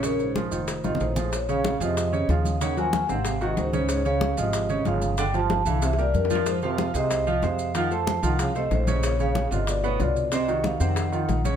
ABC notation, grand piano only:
X:1
M:4/4
L:1/8
Q:1/4=187
K:Bbm
V:1 name="Grand piano"
[D,Dd]2 [F,FA] [E,EF]2 [E,EF]2 [F,FA] | z [D,Dd]2 [F,FA]2 [D,Dd] [F,FA]2 | [D,Dd] [G,GB]2 [C,Cc]2 [E,EG]2 [D,Dd]- | [D,Dd] [D,Dd]2 [F,FA]2 [D,Dd] [F,FA]2 |
[=D,=D=d] [F,F=G]2 [=E,=E=e]2 [=G,GB]2 [F,Ff]- | [F,Ff] [F,Ff]2 [A,Ac]2 [F,Ff] [A,Ac]2 | [F,Ff] [=A,=Ac]2 [F,Ff]2 [A,Ac]2 [D,Dd]- | [D,Dd] [D,Dd]2 [=D,=DF]2 [=B,,=B,=B] [D,DF]2 |
[C,Cc] [E,EG]2 [C,Cc]2 [E,EF]2 [D,Dd] |]